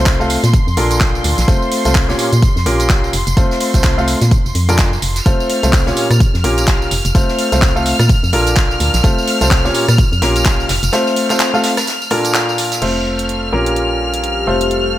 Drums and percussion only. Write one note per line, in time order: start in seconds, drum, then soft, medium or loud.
0.06 kick loud
0.06 snare loud
0.06 clap loud
0.06 closed hi-hat medium
0.06 tambourine medium
0.21 tambourine soft
0.30 closed hi-hat medium
0.30 open hi-hat loud
0.43 snare medium
0.43 closed hi-hat medium
0.43 tambourine medium
0.53 kick loud
0.53 closed hi-hat medium
0.53 tambourine medium
0.68 tambourine soft
0.77 closed hi-hat medium
0.77 open hi-hat loud
0.90 closed hi-hat soft
0.90 closed hi-hat medium
0.90 tambourine medium
1.01 kick loud
1.01 snare loud
1.01 clap loud
1.01 closed hi-hat medium
1.01 tambourine medium
1.15 tambourine soft
1.24 closed hi-hat medium
1.24 open hi-hat loud
1.38 snare medium
1.38 closed hi-hat medium
1.38 tambourine medium
1.48 kick loud
1.48 closed hi-hat soft
1.48 closed hi-hat medium
1.48 tambourine medium
1.62 tambourine soft
1.72 closed hi-hat medium
1.72 open hi-hat loud
1.85 snare soft
1.85 closed hi-hat medium
1.85 tambourine medium
1.95 kick loud
1.95 snare loud
1.95 clap loud
1.95 closed hi-hat medium
1.95 open hi-hat medium
1.95 tambourine medium
2.09 snare soft
2.09 tambourine soft
2.19 closed hi-hat medium
2.19 open hi-hat loud
2.33 closed hi-hat medium
2.33 tambourine medium
2.42 kick loud
2.42 closed hi-hat medium
2.42 tambourine medium
2.57 snare soft
2.57 tambourine soft
2.66 closed hi-hat medium
2.66 open hi-hat loud
2.80 closed hi-hat medium
2.80 closed hi-hat soft
2.80 tambourine medium
2.90 kick loud
2.90 snare loud
2.90 clap loud
2.90 closed hi-hat soft
2.90 closed hi-hat medium
2.90 tambourine medium
3.04 tambourine soft
3.13 closed hi-hat medium
3.13 open hi-hat loud
3.27 closed hi-hat medium
3.27 closed hi-hat soft
3.27 tambourine medium
3.37 kick loud
3.37 closed hi-hat soft
3.37 closed hi-hat medium
3.37 tambourine medium
3.51 snare soft
3.51 tambourine soft
3.60 closed hi-hat medium
3.60 open hi-hat loud
3.73 kick medium
3.73 snare soft
3.73 closed hi-hat medium
3.73 tambourine medium
3.84 kick loud
3.84 snare loud
3.84 clap loud
3.84 closed hi-hat soft
3.84 closed hi-hat medium
3.84 tambourine medium
3.98 tambourine soft
4.08 closed hi-hat medium
4.08 open hi-hat loud
4.21 snare medium
4.21 closed hi-hat medium
4.21 tambourine medium
4.31 kick loud
4.31 closed hi-hat medium
4.31 closed hi-hat soft
4.31 tambourine medium
4.46 tambourine soft
4.55 closed hi-hat medium
4.55 open hi-hat loud
4.69 closed hi-hat medium
4.69 closed hi-hat soft
4.69 tambourine medium
4.79 kick loud
4.79 snare loud
4.79 clap loud
4.79 closed hi-hat soft
4.79 closed hi-hat medium
4.79 tambourine medium
4.93 tambourine soft
5.02 closed hi-hat medium
5.02 open hi-hat loud
5.16 snare medium
5.16 closed hi-hat medium
5.16 tambourine medium
5.26 kick loud
5.26 closed hi-hat soft
5.26 closed hi-hat medium
5.26 tambourine medium
5.40 tambourine soft
5.49 closed hi-hat medium
5.49 open hi-hat loud
5.63 snare soft
5.63 closed hi-hat medium
5.63 tambourine medium
5.73 kick loud
5.73 snare loud
5.73 clap loud
5.73 closed hi-hat medium
5.73 open hi-hat medium
5.73 tambourine medium
5.86 snare soft
5.86 tambourine soft
5.96 closed hi-hat medium
5.96 open hi-hat loud
6.11 cross-stick medium
6.11 closed hi-hat medium
6.11 tambourine medium
6.20 kick loud
6.20 closed hi-hat soft
6.20 closed hi-hat medium
6.20 tambourine medium
6.34 snare soft
6.34 tambourine soft
6.44 closed hi-hat medium
6.44 open hi-hat loud
6.57 closed hi-hat soft
6.57 closed hi-hat medium
6.57 tambourine medium
6.68 kick loud
6.68 snare loud
6.68 clap loud
6.68 closed hi-hat soft
6.68 closed hi-hat medium
6.68 tambourine medium
6.82 tambourine soft
6.91 closed hi-hat medium
6.91 open hi-hat loud
7.05 closed hi-hat soft
7.05 closed hi-hat medium
7.05 tambourine medium
7.15 kick loud
7.15 closed hi-hat soft
7.15 closed hi-hat medium
7.15 tambourine medium
7.29 snare soft
7.29 tambourine soft
7.39 closed hi-hat medium
7.39 open hi-hat loud
7.52 snare soft
7.52 closed hi-hat medium
7.52 tambourine medium
7.62 kick loud
7.62 snare loud
7.62 clap loud
7.62 closed hi-hat medium
7.62 closed hi-hat loud
7.62 tambourine medium
7.77 tambourine soft
7.86 closed hi-hat medium
7.86 open hi-hat loud
7.99 cross-stick medium
7.99 snare medium
7.99 closed hi-hat medium
7.99 tambourine medium
8.09 kick loud
8.09 closed hi-hat medium
8.09 tambourine medium
8.24 tambourine soft
8.33 closed hi-hat medium
8.33 open hi-hat loud
8.47 closed hi-hat soft
8.47 closed hi-hat medium
8.47 tambourine medium
8.56 kick loud
8.56 snare loud
8.56 clap loud
8.56 closed hi-hat medium
8.56 tambourine medium
8.71 tambourine soft
8.80 closed hi-hat medium
8.80 open hi-hat loud
8.94 snare medium
8.94 closed hi-hat medium
8.94 tambourine medium
9.04 kick loud
9.04 closed hi-hat medium
9.04 tambourine medium
9.18 tambourine soft
9.27 closed hi-hat medium
9.27 open hi-hat loud
9.41 snare soft
9.41 closed hi-hat medium
9.41 tambourine medium
9.51 kick loud
9.51 snare loud
9.51 clap loud
9.51 closed hi-hat medium
9.51 open hi-hat medium
9.65 snare soft
9.65 tambourine soft
9.74 closed hi-hat medium
9.74 open hi-hat loud
9.88 cross-stick medium
9.88 snare soft
9.88 closed hi-hat medium
9.88 tambourine medium
9.98 kick loud
9.98 closed hi-hat medium
9.98 tambourine medium
10.12 closed hi-hat soft
10.12 tambourine soft
10.22 snare loud
10.22 closed hi-hat medium
10.22 open hi-hat loud
10.36 closed hi-hat medium
10.36 tambourine medium
10.45 kick loud
10.45 snare loud
10.45 clap loud
10.45 closed hi-hat medium
10.45 tambourine medium
10.60 tambourine soft
10.69 snare loud
10.69 open hi-hat medium
10.69 open hi-hat loud
10.83 closed hi-hat medium
10.83 closed hi-hat soft
10.83 tambourine medium
10.92 snare loud
10.92 closed hi-hat medium
10.92 open hi-hat medium
10.92 tambourine medium
11.06 snare soft
11.06 tambourine soft
11.16 closed hi-hat medium
11.16 open hi-hat loud
11.30 snare soft
11.30 clap soft
11.30 closed hi-hat medium
11.30 tambourine medium
11.40 snare loud
11.40 clap loud
11.40 closed hi-hat medium
11.40 tambourine medium
11.54 tambourine soft
11.64 snare medium
11.64 open hi-hat loud
11.64 open hi-hat medium
11.77 cross-stick medium
11.77 snare loud
11.77 closed hi-hat medium
11.77 open hi-hat medium
11.77 tambourine medium
11.87 snare loud
11.87 closed hi-hat medium
11.87 open hi-hat medium
11.87 tambourine medium
12.02 tambourine soft
12.10 cross-stick medium
12.10 closed hi-hat medium
12.10 open hi-hat loud
12.24 closed hi-hat soft
12.24 closed hi-hat medium
12.24 tambourine medium
12.34 snare loud
12.34 clap loud
12.34 closed hi-hat medium
12.34 tambourine medium
12.49 tambourine soft
12.58 closed hi-hat medium
12.58 open hi-hat loud
12.72 snare medium
12.72 closed hi-hat medium
12.72 tambourine medium
12.82 closed hi-hat medium
12.82 crash medium
13.19 closed hi-hat medium
13.29 closed hi-hat medium
13.66 closed hi-hat medium
13.76 closed hi-hat medium
14.14 closed hi-hat medium
14.24 closed hi-hat medium
14.61 closed hi-hat medium
14.71 closed hi-hat medium